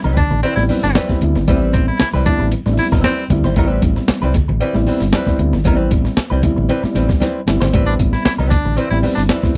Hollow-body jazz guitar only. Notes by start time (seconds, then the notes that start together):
0.04 G3 C4 E4 B4
0.18 muted hollow-body jazz guitar stroke
0.31 muted hollow-body jazz guitar stroke
0.43 G3 C4 E4 B4
0.57 muted hollow-body jazz guitar stroke
0.69 G3 C4 E4 B4
0.82 muted hollow-body jazz guitar stroke
0.95 G3 C4 E4 B4
1.22 muted hollow-body jazz guitar stroke
1.36 muted hollow-body jazz guitar stroke
1.48 G3 C4 E4 B4
1.88 muted hollow-body jazz guitar stroke
2.00 muted hollow-body jazz guitar stroke
2.13 G3 C4 E4 B4
2.26 muted hollow-body jazz guitar stroke
2.40 muted hollow-body jazz guitar stroke
2.52 muted hollow-body jazz guitar stroke
2.66 muted hollow-body jazz guitar stroke
2.92 G3 C4 E4 B4
3.04 G3 C4 E4 B4
3.31 muted hollow-body jazz guitar stroke
3.44 G3 C4 E4 C5
3.57 G3 C4 E4 B4
3.97 muted hollow-body jazz guitar stroke
4.09 muted hollow-body jazz guitar stroke
4.22 G3 C4 E4 B4
4.34 muted hollow-body jazz guitar stroke
4.48 muted hollow-body jazz guitar stroke
4.60 G3 C4 E4 B4
4.75 muted hollow-body jazz guitar stroke
4.87 G3 C4 E4 B4
5.02 muted hollow-body jazz guitar stroke
5.14 G3 C4 E4 B4
5.40 muted hollow-body jazz guitar stroke
5.53 muted hollow-body jazz guitar stroke
5.65 G3 C4 E4 B4
6.05 muted hollow-body jazz guitar stroke
6.17 muted hollow-body jazz guitar stroke
6.30 G3 C4 E4 B4
6.43 muted hollow-body jazz guitar stroke
6.56 muted hollow-body jazz guitar stroke
6.69 G3 C4 E4 B4
6.83 muted hollow-body jazz guitar stroke
6.95 G3 C4 E4 B4
7.08 muted hollow-body jazz guitar stroke
7.20 G3 C4 E4 B4
7.47 muted hollow-body jazz guitar stroke
7.60 G3 C4 E4 C5
7.73 G3 C4 E4 B4
8.13 muted hollow-body jazz guitar stroke
8.25 muted hollow-body jazz guitar stroke
8.38 G3 C4 E4 B4
8.52 muted hollow-body jazz guitar stroke
8.65 muted hollow-body jazz guitar stroke
8.77 G3 C4 E4 B4
8.91 muted hollow-body jazz guitar stroke
9.03 G3 C4 E4 B4
9.16 muted hollow-body jazz guitar stroke
9.29 G3 C4 E4 B4